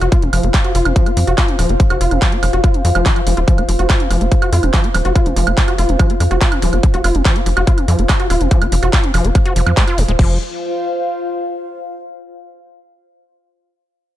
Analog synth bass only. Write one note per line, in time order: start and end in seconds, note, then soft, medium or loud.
0.01 0.09 F1 medium
0.22 0.30 F1 medium
0.33 0.40 F1 medium
0.43 0.51 F1 medium
0.75 0.82 F1 loud
0.85 0.93 F1 medium
1.17 1.24 F2 loud
1.27 1.35 F1 medium
1.59 1.66 D#1 medium
1.69 1.77 F1 medium
1.90 1.98 F1 medium
2.01 2.08 F1 medium
2.11 2.19 F1 medium
2.43 2.50 F1 loud
2.53 2.61 F1 medium
2.85 2.92 F2 medium
2.95 3.03 F1 medium
3.27 3.34 F1 loud
3.37 3.45 D#1 medium
3.58 3.66 F1 medium
3.69 3.76 F1 loud
3.79 3.87 F1 medium
4.11 4.18 F1 loud
4.21 4.29 F1 medium
4.53 4.60 F2 medium
4.63 4.71 F1 medium
4.94 5.02 D#1 loud
5.05 5.12 F1 medium
5.26 5.33 F1 medium
5.36 5.44 F1 loud
5.47 5.54 F1 medium
5.78 5.86 F1 loud
5.89 5.96 F1 medium
6.20 6.28 F2 medium
6.31 6.38 F1 medium
6.62 6.70 D#1 loud
6.73 6.80 F1 medium
6.94 7.01 F1 medium
7.04 7.12 F1 loud
7.15 7.22 F1 medium
7.46 7.54 F1 loud
7.57 7.64 F1 medium
7.88 7.96 F2 loud
7.99 8.06 F1 medium
8.30 8.38 D#1 medium
8.41 8.48 F1 medium
8.62 8.69 F1 medium
8.72 8.80 F1 medium
8.83 8.90 F1 medium
9.14 9.22 F1 loud
9.25 9.32 F1 medium
9.56 9.64 F1 medium
9.66 9.74 F2 medium
9.98 10.06 F1 medium
10.08 10.16 D#1 medium
10.19 10.38 F1 loud